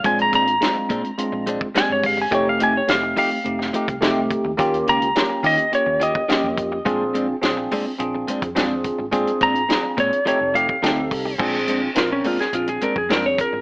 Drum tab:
CC |----------------|----------------|----------------|----------------|
HH |xxxxx-xxx-x-x-o-|x-x-x-o-x-xxx-x-|xxxxx-oxx-x-x-x-|x-x-x-o-x-xxx-x-|
SD |----o-------o---|----o----o--o---|----o-------o---|----o-------o---|
BD |o-o---o----o--o-|o----------o--o-|o----------o--o-|o----------o--o-|

CC |----------------|x---------------|
HH |xxxxx-xxx-x-x-o-|--x-x-oxxxx-x-x-|
SD |----o-------o---|----o--o----o---|
BD |o-o---o----o--o-|o----------o--o-|